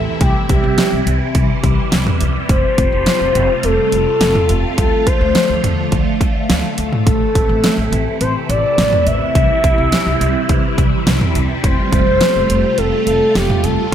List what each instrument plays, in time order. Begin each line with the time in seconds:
Already playing: string machine C3 E3 A3 E4, analog synth lead A4
0.21 upright bass C2, string machine E3 G3, analog synth lead G4, kick, closed hi-hat
0.49 upright bass C2, analog synth lead G4, kick, closed hi-hat
0.64 upright bass C2
0.78 snare, closed hi-hat
0.92 upright bass C2
1.07 upright bass C2, closed hi-hat
1.35 upright bass C2, kick, closed hi-hat
1.64 upright bass C2, kick, closed hi-hat
1.92 upright bass C2, snare, closed hi-hat
2.07 mid tom
2.21 upright bass C2, closed hi-hat
2.49 upright bass F1, string machine C3 A3 F4, analog synth lead C5, kick, closed hi-hat
2.78 upright bass F1, kick, closed hi-hat
2.92 upright bass F1
3.06 snare, closed hi-hat
3.21 upright bass F1
3.35 upright bass F1, closed hi-hat
3.63 upright bass F1, analog synth lead A4, closed hi-hat
3.92 upright bass F1, closed hi-hat
4.21 upright bass F1, snare, closed hi-hat
4.35 mid tom
4.49 upright bass F1, closed hi-hat
4.78 upright bass D2, string machine D3 F3, analog synth lead A4, kick, closed hi-hat
5.07 upright bass D2, analog synth lead C5, kick, closed hi-hat
5.21 upright bass D2
5.35 snare, closed hi-hat
5.49 upright bass D2
5.64 upright bass D2, closed hi-hat, mid tom
5.92 upright bass D2, kick, closed hi-hat
6.21 upright bass D2, kick, closed hi-hat
6.49 upright bass D2, snare, closed hi-hat
6.78 upright bass D2, closed hi-hat
6.93 mid tom
7.06 upright bass A1, string machine C3 E3 E4, analog synth lead A4, kick, closed hi-hat
7.35 upright bass A1, kick, closed hi-hat
7.49 upright bass A1
7.64 snare, closed hi-hat
7.78 upright bass A1
7.92 upright bass A1, closed hi-hat
8.21 upright bass A1, analog synth lead C5, closed hi-hat
8.49 upright bass A1, analog synth lead D5, closed hi-hat
8.78 upright bass A1, snare, closed hi-hat
8.93 mid tom
9.06 upright bass A1, analog synth lead E5, closed hi-hat
9.35 upright bass C2, string machine G3, kick, closed hi-hat
9.64 upright bass C2, kick, closed hi-hat
9.78 upright bass C2
9.92 snare, closed hi-hat
10.06 upright bass C2
10.21 upright bass C2, closed hi-hat
10.49 upright bass C2, kick, closed hi-hat
10.78 upright bass C2, kick, closed hi-hat
11.06 upright bass C2, snare, closed hi-hat
11.21 mid tom
11.35 upright bass C2, closed hi-hat
11.63 upright bass F1, string machine A3 F4, analog synth lead C5, kick, closed hi-hat
11.93 upright bass F1, kick, closed hi-hat
12.07 upright bass F1
12.21 snare, closed hi-hat
12.35 upright bass F1
12.50 upright bass F1, closed hi-hat
12.78 upright bass F1, analog synth lead A4, closed hi-hat
13.06 upright bass F1, analog synth lead A4, closed hi-hat
13.35 upright bass F1, analog synth lead G4, snare, closed hi-hat
13.50 mid tom
13.63 upright bass F1, analog synth lead A4, closed hi-hat